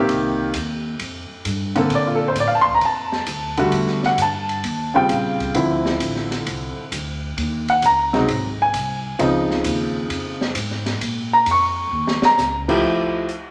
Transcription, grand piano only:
Already playing: D#3 A#3 C4 G4
1.75 D3 A#3 C4 A4
1.95 D5
2.07 F4
2.15 A4
2.28 C5
2.40 D5
2.47 F5
2.55 A5
2.61 C6
2.75 A#5
2.85 A5
3.57 D3 G3 A3 F#4
4.06 F#5
4.22 A5
4.94 C#3 G3 C4 F4 G5
5.54 D3 F3 C4 E4
7.70 F#5
7.86 A#5
8.13 C3 F#3 G#3 D#4
8.62 G#5
9.19 C#3 F3 C4 D#4
11.33 A#5
11.51 C#6
12.25 A#5
12.68 F3 A3 E4 G4

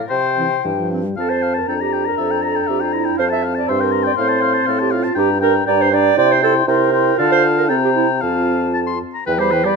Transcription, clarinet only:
0.38 C4
0.92 C4
1.18 A4
1.30 C5
1.57 A#4
1.68 A4
1.81 G4
2.07 A#4
2.19 A4
2.69 G4
2.82 F4
2.94 E4
3.19 C5
3.32 E5
3.58 D5
3.69 C5
3.81 A#4
4.06 D5
4.19 C5
4.68 A4
4.81 G4
4.94 F4
5.18 G4
5.42 A#4
5.67 D5
5.81 C5
5.93 D5
6.18 D5
6.31 C5
6.43 A4
6.68 A#4
7.19 A4
7.32 C5
7.58 A#4
7.70 A4
7.84 G4
7.95 E4
8.23 F4
9.27 B4
9.40 C5
9.66 D5

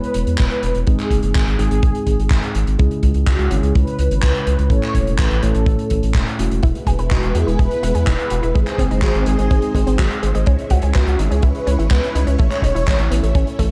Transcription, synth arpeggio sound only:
6.63 E4
6.87 G#4
6.99 B4
7.11 D#4
7.35 F#4
7.47 E4
7.59 G#4
7.83 E4
7.95 G#4
8.07 D#4
8.31 F#4
8.43 E4
8.55 G#3
8.79 C4
8.91 D#4
9.03 F#3
9.27 G#3
9.39 G#3
9.51 C4
9.75 G#3
9.87 C4
9.99 F#3
10.23 G#3
10.35 G#3
10.47 C#4
10.71 F#4
10.83 G#4
10.95 B3
11.19 D#4
11.31 C#4
11.43 E4
11.67 C#4
11.79 E4
11.91 B3
12.15 D#4
12.27 C#4
12.39 A3
12.63 D#4
12.75 E4
12.87 G#3
13.11 B3
13.23 A3
13.35 C#4
13.59 A3

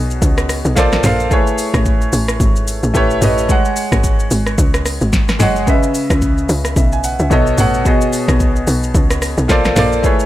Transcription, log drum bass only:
Already playing: B1
0.22 C#2
0.65 B1
1.04 A#1
1.74 A1
2.13 A1
2.40 G#1
2.83 A1
2.95 A1
3.22 A1
3.92 G#1
4.31 G#1
4.58 C#2
5.01 G#1
5.40 F#1
6.10 C#2
6.49 C#2
6.76 B1
7.20 C#2
7.31 B1
7.58 A1
8.28 B1
8.67 B1
8.95 C#2
9.38 B1
9.76 A#1

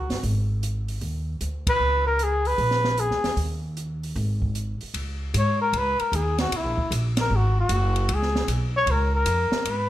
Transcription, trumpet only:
Already playing: F#4
1.69 B4
2.07 A#4
2.23 G#4
2.47 B4
3.00 G#4
5.38 C#5
5.61 A#4
5.77 B4
6.00 A#4
6.15 G#4
6.41 F#4
6.57 E4
7.21 A#4
7.36 F#4
7.61 F#4
8.15 G#4
8.77 C#5
8.91 A#4
9.15 A#4
9.71 B4

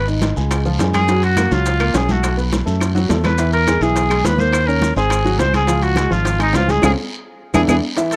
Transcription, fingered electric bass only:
Already playing: G#1
0.37 C#2
0.80 F#2
1.51 C#2
1.94 B1
2.67 F#2
3.10 E2
3.81 B1
4.24 D#2
4.96 G#1
5.40 C#2
6.11 G#1
6.54 C#2
6.83 C#2
7.55 E2
7.69 E2

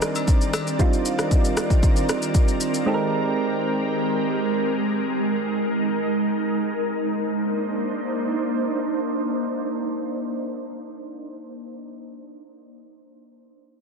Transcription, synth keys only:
Already playing: G3 C4 D4 D#4 A#4
0.79 G3 C4 D4 D#4 F4
2.86 G#3 C4 D#4 G4 A4
2.94 A#4

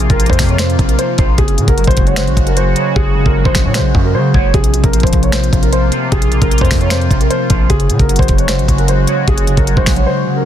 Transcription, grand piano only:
0.10 A#4
0.30 C5
0.50 C#5
0.59 C5
0.89 A#4
0.99 C5
1.38 G#4
1.68 A#4
1.88 C5
2.07 C#5
2.17 C5
2.47 A#4
2.57 C5
2.96 G#4
3.26 A#4
3.46 C5
3.65 C#5
3.75 C5
4.05 A#4
4.15 C5
4.54 G#4
4.84 A#4
5.04 C5
5.23 C#5
5.33 C5
5.63 A#4
5.73 C5
6.12 G#4
6.42 A#4
6.61 C5
6.81 C#5
6.91 C5
7.20 A#4
7.30 C5
7.70 G#4
8.00 A#4
8.19 C5
8.39 C#5
8.49 C5
8.78 A#4
8.89 C5
9.28 G#4
9.57 A#4
9.77 C5
9.97 C#5
10.07 C5
10.36 A#4

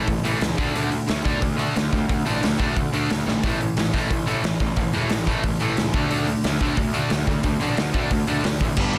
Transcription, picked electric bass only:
0.08 A1
0.25 A1
0.41 C#2
0.58 D2
0.75 D2
1.09 D2
1.25 D2
1.42 D2
1.76 D2
1.93 D2
2.10 D2
2.26 A1
2.43 D2
2.60 D2
2.77 D2
2.93 D2
3.11 D2
3.27 A1
3.43 A1
3.77 A1
3.94 A1
4.11 A1
4.44 A1
4.60 A1
4.77 A1
4.94 E1
5.11 A1
5.27 A1
5.44 A1
5.61 A1
5.78 C#2
5.94 D2
6.11 D2
6.44 D2
6.61 D2
6.77 D2
7.11 D2
7.27 D2
7.44 D2
7.61 A1
7.77 D2
7.94 D2
8.11 D2
8.27 D2
8.44 D2
8.61 A1
8.77 G1
8.94 G1

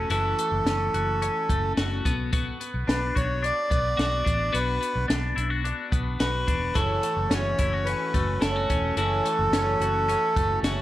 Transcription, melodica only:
0.10 A4
2.88 B4
3.17 C#5
3.45 D5
4.54 B4
6.20 B4
6.75 A4
7.29 C#5
7.84 B4
8.41 A4
8.97 A4

